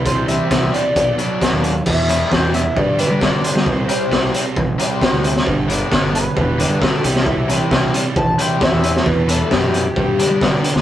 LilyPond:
<<
  \new Staff \with { instrumentName = "Analog synth lead" } { \time 4/4 \key c \lydian \tempo 4 = 133 c''8 e''4 d''2 r8 | e''4 g''8 e''8 d''8 b'8 d''8 c''8~ | c''2~ c''8 r4. | r4. b'4. a'8 g'8 |
e'8 e'8 r4 a''8 g''8 e''4 | b'8 a'8 g'2. | }
  \new Staff \with { instrumentName = "String machine" } { \time 4/4 \key c \lydian << { r1 | r1 | r1 | r1 |
r1 | <g' b'>1 | } \\ { r1 | r1 | r1 | r1 |
r1 | <e d'>2 <d b>2 | } >> }
  \new Staff \with { instrumentName = "Overdriven electric guitar" } { \time 4/4 \key c \lydian r8 <c g c' e'>8 <c g c' e'>8 r4 <b, fis b d'>8 <b, fis b d'>8 r8 | r8 <e g b e'>8 <e g b e'>8 r4 <d g b d'>8 <d g b d'>8 r8 | r8 <c g c' e'>8 <c g c' e'>8 r4 <c g c' e'>8 <c g c' e'>8 r8 | r8 <d g b d'>8 <d g b d'>8 r4 <d g b d'>8 <d g b d'>8 r8 |
r8 <c g c' e'>8 <c g c' e'>8 r4 <c g c' e'>8 <c g c' e'>8 r8 | r8 <e g b e'>8 <e g b e'>8 r4 <d g b d'>8 <d g b d'>8 r8 | }
  \new Staff \with { instrumentName = "Distorted electric guitar" } { \clef bass \time 4/4 \key c \lydian <c e g>8 <c e>8 <c e>8 <c e g>8 <b, fis b>8 <b, fis>8 <b, fis>8 <b, fis>8 | <e, b, e>8 <e, b,>8 <e, b,>8 <e, b,>8 <g, d g>8 <g, d>8 <g, d>8 <g, d>8 | <c g c'>8 <c g>8 <c g>8 <c g c'>8 <c g>8 <c g>8 <c g>8 <c g>8 | <g, d g>8 <g, d>8 <g, d>8 <g, d>8 <g, d g>8 <g, d>8 <g, d>8 <c e g>8 |
<c e g>8 <c e>8 <c e>8 <c e g>8 <c e>8 <c e>8 <c e>8 <c e>8 | <e, b, e>8 <e, b,>8 <e, b,>8 <e, b,>8 <g, d g>8 <g, d>8 <g, d>8 <g, d>8 | }
  \new Staff \with { instrumentName = "Fingered electric bass" } { \clef bass \time 4/4 \key c \lydian c,4 c,8 r8 b,,8 r8. dis,8. | e,4 e,4 g,8. g8 r8 g16 | c,8 r8 c,8 r8 a,,8 r8. d,8. | g,,4 g,,4 e,,8. g,8 r16 c,8~ |
c,4 c,8 r8 a,,8 r8. e,8. | e,4 fis,4 g,8. g8 r8 d,16 | }
  \new DrumStaff \with { instrumentName = "Drums" } \drummode { \time 4/4 <hh bd>8 hh8 <hh bd sn>8 hh8 <hh bd>8 hh8 <hh bd sn>8 hh8 | <cymc bd>8 hh8 <bd sn>8 hh8 bd8 hh8 <bd sn>8 hh16 sn16 | bd8 hh8 <bd sn>8 hh8 bd8 hh8 <bd sn>8 hh16 sn16 | bd8 hh8 <bd sn>8 hh8 bd8 hh8 <bd sn>8 hh16 sn16 |
bd8 hh8 <bd sn>8 hh8 bd8 hh8 <bd sn>8 hh16 sn16 | bd8 hh8 <bd sn>8 hh8 bd8 hh8 <bd sn>8 hh16 sn16 | }
>>